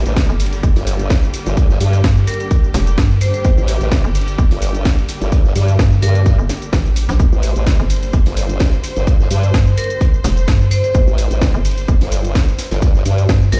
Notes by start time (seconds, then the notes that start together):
Already playing: D3 G3 A#3 G4
0.06 A1, closed hi-hat, shaker
0.16 kick, snare, closed hi-hat, shaker
0.29 G1, shaker
0.40 open hi-hat, shaker
0.46 closed hi-hat
0.53 closed hi-hat, shaker
0.63 G1, kick, closed hi-hat, shaker
0.76 G1, snare, open hi-hat, shaker
0.87 snare, closed hi-hat, open hi-hat, shaker
0.99 closed hi-hat, shaker
1.10 kick, snare, closed hi-hat, shaker
1.23 closed hi-hat, shaker
1.34 closed hi-hat, open hi-hat, shaker
1.46 G1, snare, closed hi-hat, shaker
1.57 kick, closed hi-hat, shaker
1.69 snare, shaker
1.81 G2, closed hi-hat, open hi-hat, shaker
1.93 closed hi-hat, shaker
2.04 G2, kick, snare, closed hi-hat, shaker
2.17 shaker
2.27 A#4, closed hi-hat, open hi-hat, shaker
2.34 closed hi-hat
2.40 closed hi-hat, shaker
2.50 kick, closed hi-hat, shaker
2.64 shaker
2.74 F1, snare, closed hi-hat, open hi-hat, shaker
2.87 closed hi-hat, shaker
2.97 G2, kick, snare, closed hi-hat, shaker
3.10 shaker
3.21 C5, closed hi-hat, open hi-hat, shaker
3.33 C5, snare, closed hi-hat, shaker
3.45 G1, kick, closed hi-hat, shaker
3.57 A1, shaker
3.67 closed hi-hat, open hi-hat, shaker
3.81 A1, closed hi-hat, shaker
3.91 kick, snare, closed hi-hat, shaker
4.04 G1, shaker
4.15 open hi-hat, shaker
4.21 closed hi-hat
4.28 closed hi-hat, shaker
4.38 G1, kick, closed hi-hat, shaker
4.51 G1, snare, open hi-hat, shaker
4.61 snare, closed hi-hat, open hi-hat, shaker
4.75 closed hi-hat, shaker
4.85 kick, snare, closed hi-hat, shaker
4.97 closed hi-hat, shaker
5.09 closed hi-hat, open hi-hat, shaker
5.21 G1, snare, closed hi-hat, shaker
5.32 kick, closed hi-hat, shaker
5.45 snare, shaker
5.56 G2, closed hi-hat, open hi-hat, shaker
5.68 closed hi-hat, shaker
5.79 G2, kick, snare, closed hi-hat, shaker
5.92 shaker
6.02 G2 A#4, closed hi-hat, open hi-hat, shaker
6.15 closed hi-hat, shaker
6.25 kick, snare, closed hi-hat, shaker
6.39 G1, shaker
6.49 snare, closed hi-hat, open hi-hat, shaker
6.62 closed hi-hat, shaker
6.72 A1, kick, snare, closed hi-hat, shaker
6.86 closed hi-hat, shaker
6.96 closed hi-hat, open hi-hat, shaker
7.09 A#1, snare, closed hi-hat, shaker
7.19 G1 C5, kick, closed hi-hat, shaker
7.32 A1, shaker
7.42 closed hi-hat, open hi-hat, shaker
7.56 A1, closed hi-hat, shaker
7.66 kick, snare, closed hi-hat, shaker
7.79 G1, shaker
7.90 open hi-hat, shaker
7.96 closed hi-hat
8.03 closed hi-hat, shaker
8.13 G1, kick, closed hi-hat, shaker
8.26 G1, snare, open hi-hat, shaker
8.37 snare, closed hi-hat, open hi-hat, shaker
8.49 closed hi-hat, shaker
8.59 kick, snare, closed hi-hat, shaker
8.72 closed hi-hat, shaker
8.83 closed hi-hat, open hi-hat, shaker
8.96 G1, snare, closed hi-hat, shaker
9.07 kick, closed hi-hat, shaker
9.20 snare, shaker
9.31 G2, closed hi-hat, open hi-hat, shaker
9.43 closed hi-hat, shaker
9.54 G2, kick, snare, closed hi-hat, shaker
9.67 shaker
9.77 A#4, closed hi-hat, open hi-hat, shaker
9.84 closed hi-hat
9.90 closed hi-hat, shaker
10.01 kick, closed hi-hat, shaker
10.14 shaker
10.24 F1, snare, closed hi-hat, open hi-hat, shaker
10.37 closed hi-hat, shaker
10.48 G2, kick, snare, closed hi-hat, shaker
10.61 shaker
10.71 C5, closed hi-hat, open hi-hat, shaker
10.83 C5, snare, closed hi-hat, shaker
10.94 G1, kick, closed hi-hat, shaker
11.07 A1, shaker
11.18 closed hi-hat, open hi-hat, shaker
11.31 A1, closed hi-hat, shaker
11.41 kick, snare, closed hi-hat, shaker
11.54 G1, shaker
11.65 open hi-hat, shaker
11.71 closed hi-hat
11.78 closed hi-hat, shaker
11.88 G1, kick, closed hi-hat, shaker
12.01 G1, snare, open hi-hat, shaker
12.11 snare, closed hi-hat, open hi-hat, shaker
12.25 closed hi-hat, shaker
12.35 kick, snare, closed hi-hat, shaker
12.48 closed hi-hat, shaker
12.58 snare, closed hi-hat, open hi-hat, shaker
12.71 G1, snare, closed hi-hat, shaker
12.81 kick, snare, closed hi-hat, shaker
12.95 snare, shaker
13.05 G2, closed hi-hat, open hi-hat, shaker
13.18 closed hi-hat, shaker
13.29 G2, kick, snare, closed hi-hat, shaker
13.42 shaker
13.52 A#1 A#4, snare, closed hi-hat, open hi-hat, shaker